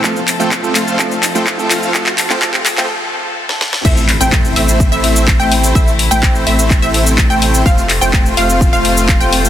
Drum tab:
CC |----------------|----------------|x---------------|----------------|
HH |--o---o---o---o-|--o---o---------|--o---o---o---o-|--o---o---o---o-|
SH |xxxxxxxxxxxxxxxx|xxxxxxxx--------|xx-xxx-xxx-xxx-x|xx-xxx-xxx-xxx-x|
CP |x-x-x-x-x-x-x-x-|xxxxxxxx--------|--x-x-------x---|----x---x---x---|
SD |----------------|-------------ooo|----------------|----------------|
BD |o---o---o---o---|o---o-----------|o---o---o---o---|o---o---o---o---|

CC |----------------|
HH |--o---o---o---o-|
SH |xx-xxx-xxx-xxx-x|
CP |--x-x-------x---|
SD |----------------|
BD |o---o---o---o---|